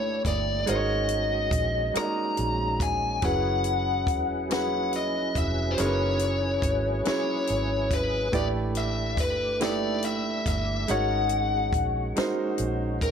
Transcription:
Already playing: fingered electric bass G1, tonewheel organ A3 D4 G4, grand piano A3 E4 G4 B4 C#5 D5, lead electric guitar C#5
0.25 fingered electric bass G1, lead electric guitar D5, kick, closed hi-hat
0.66 fingered electric bass G#1, grand piano G#3 D#4 F#4 A#4 C5, tonewheel organ G#3 C#4 F#4, lead electric guitar D#5, closed hi-hat
0.76 grand piano C#5
1.09 closed hi-hat
1.51 fingered electric bass A#1, kick, closed hi-hat
1.94 grand piano G#3 D#4 F#4 A#4 D5, lead electric guitar A#5, muted fingered electric bass stroke, cross-stick, closed hi-hat
2.03 grand piano D#5
2.37 fingered electric bass A#1, closed hi-hat
2.80 lead electric guitar G#5, kick, closed hi-hat
3.21 fingered electric bass F#1, tonewheel organ F#3 E4 G#4 B4, grand piano F#3 C#4 E4 G#4 B4, lead electric guitar F#5, kick, closed hi-hat
3.64 closed hi-hat
4.07 fingered electric bass E1, kick, closed hi-hat
4.49 grand piano F#3 C#4 E4 G#4 B4, lead electric guitar F#5, snare, closed hi-hat
4.93 lead electric guitar D#5, closed hi-hat
5.35 fingered electric bass F1, lead electric guitar E5, kick, closed hi-hat
5.71 lead electric guitar C5
5.77 fingered electric bass F#1, grand piano F#3 C#4 E4 G#4 A#4, lead electric guitar C#5, closed hi-hat
5.86 grand piano B4
6.19 closed hi-hat
6.62 fingered electric bass G#1, kick, closed hi-hat
7.05 grand piano F#3 C#4 E4 G#4 C#5, lead electric guitar C#5, muted fingered electric bass stroke, snare, closed hi-hat
7.47 fingered electric bass G#1, closed hi-hat
7.91 lead electric guitar B4, kick, closed hi-hat
8.32 fingered electric bass A1, grand piano A3 E4 G4 B4 D5, tonewheel organ A3 D4 G4, lead electric guitar D5, kick, closed hi-hat
8.75 lead electric guitar E5, closed hi-hat
9.17 fingered electric bass G1, lead electric guitar B4, kick, closed hi-hat
9.60 grand piano A3 E4 G4 B4 E5, lead electric guitar D5, snare, closed hi-hat
10.03 lead electric guitar E5, closed hi-hat
10.46 fingered electric bass G1, lead electric guitar E5, kick, closed hi-hat
10.88 fingered electric bass G#1, grand piano G#3 D#4 F#4 A#4 C#5, tonewheel organ G#3 C#4 F#4, lead electric guitar F#5, closed hi-hat
11.29 closed hi-hat
11.73 fingered electric bass A#1, kick, closed hi-hat
12.16 grand piano G#3 D#4 F#4 A#4 C5, muted fingered electric bass stroke, snare, closed hi-hat
12.58 fingered electric bass A#1, closed hi-hat
13.01 lead electric guitar A#4, kick, closed hi-hat

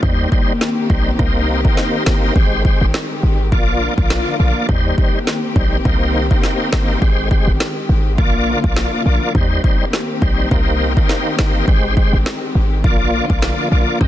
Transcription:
Already playing: string section A#3
0.02 808-style bass D#2, string section D#3 C4 G4, tonewheel organ G3 D#4 C5, kick
0.31 tonewheel organ G3 D#4 C5, kick
0.61 snare
0.90 808-style bass A#1, tonewheel organ G3 D#4 C5, kick
1.19 808-style bass C2, tonewheel organ A#3 D#4 C5, kick
1.64 tonewheel organ A#3 D#4 C5, kick
1.77 snare
2.06 808-style bass G1, tonewheel organ A#3 D#4 C5, snare
2.35 808-style bass G#1, string section D#3 G#3, tonewheel organ G#3 G4 C5, kick
2.65 tonewheel organ G#3 G4 C5, kick
2.81 808-style bass G#1
2.94 snare
3.23 808-style bass G#1
3.52 808-style bass A#1, string section D3 F3 A#3 F4, tonewheel organ A#3 F4 D5, kick
3.98 808-style bass A#1, tonewheel organ A#3 F4 D5, kick
4.10 cross-stick, snare
4.39 808-style bass A#1, tonewheel organ A#3 F4 D5
4.68 808-style bass D#2, string section D#3 C4 G4, tonewheel organ G3 D#4 C5, kick
4.98 tonewheel organ G3 D#4 C5, kick
5.27 snare
5.56 808-style bass A#1, tonewheel organ G3 D#4 C5, kick
5.85 808-style bass C2, tonewheel organ A#3 D#4 C5, string section A#3, kick
6.31 tonewheel organ A#3 D#4 C5, kick
6.43 snare
6.72 808-style bass G1, tonewheel organ A#3 D#4 C5, snare
7.01 808-style bass G#1, tonewheel organ G#3 G4 C5, string section G#3, kick
7.31 tonewheel organ G#3 G4 C5, kick
7.47 808-style bass G#1
7.60 snare
7.89 808-style bass G#1
8.18 808-style bass A#1, string section D3 F3 A#3 F4, tonewheel organ A#3 F4 D5, kick
8.63 808-style bass A#1, tonewheel organ A#3 F4 D5, kick
8.76 snare
9.06 808-style bass A#1, tonewheel organ A#3 F4 D5
9.35 808-style bass D#2, string section D#3 A#3 C4 G4, tonewheel organ G3 D#4 C5, kick
9.64 tonewheel organ G3 D#4 C5, kick
9.93 snare
10.22 808-style bass A#1, tonewheel organ G3 D#4 C5, kick
10.51 808-style bass C2, tonewheel organ A#3 D#4 C5, kick
10.96 tonewheel organ A#3 D#4 C5, kick
11.09 snare
11.38 808-style bass G1, tonewheel organ A#3 D#4 C5, snare
11.67 808-style bass G#1, tonewheel organ G#3 G4 C5, string section G#3 C4, kick
11.97 tonewheel organ G#3 G4 C5, kick
12.13 808-style bass G#1
12.26 snare
12.55 808-style bass G#1
12.84 808-style bass A#1, string section D3 F3 A#3 F4, tonewheel organ A#3 F4 D5, kick
13.29 808-style bass A#1, tonewheel organ A#3 F4 D5, kick
13.42 cross-stick, snare
13.71 808-style bass A#1, tonewheel organ A#3 F4 D5
14.00 808-style bass D#2, string section C3 G3 D#4, tonewheel organ C4 G4 D#5, kick

